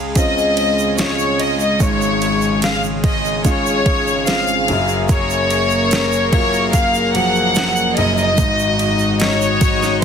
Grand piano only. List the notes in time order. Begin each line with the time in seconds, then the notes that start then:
Already playing: C#2
0.16 C4 C#4 F4
0.98 G#3 C#4 F4
1.80 G#1
3.45 G#3 C#4 F4
4.26 C4 C#4 F4
4.68 F#1 F#2
6.33 F#3 A#3 F4
7.15 F3 F#3 A#3
7.98 F#1 F#2
8.39 G#1 G#2